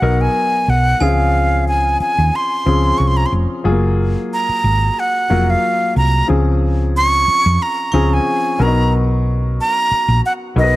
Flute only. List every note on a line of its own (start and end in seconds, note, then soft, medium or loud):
0.00 0.23 F#5 medium
0.21 0.71 G#5 medium
0.70 1.04 F#5 medium
1.03 1.68 F5 medium
1.68 1.98 G#5 medium
2.01 2.37 G#5 medium
2.36 2.99 C6 medium
2.98 3.09 C#6 medium
3.08 3.18 C6 medium
3.17 3.27 A#5 medium
3.26 3.33 C6 medium
4.33 5.01 A#5 loud
5.00 5.52 F#5 medium
5.50 5.97 F5 medium
5.97 6.27 A#5 medium
6.97 7.64 C#6 loud
7.62 8.15 A#5 medium
8.14 8.64 G#5 medium
8.62 8.93 A#5 medium
9.61 10.21 A#5 loud
10.26 10.33 F#5 medium
10.59 10.76 D#5 loud